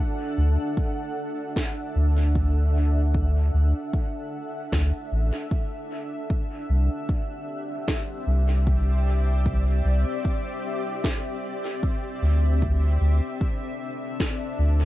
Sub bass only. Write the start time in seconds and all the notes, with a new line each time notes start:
0.38 D2
1.96 D2
3.54 D2
4.72 D2
5.12 A1
6.69 C2
8.27 C2
9.85 C2
12.22 D2
13.01 D2
14.59 D2